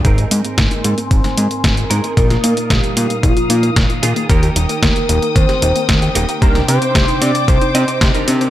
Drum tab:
HH |xxxxxxxxxxxxxxxx|xxxxxxxxxxxxxxxx|xxxxxxxxxxxxxxxx|xxxxxxxxxxxxxxxx|
SD |----o----o--o---|-o--o-------o---|----o----o--o---|-o--o-------o---|
BD |o---o---o---o---|o---o---o---o---|o---o---o---o---|o---o---o---o---|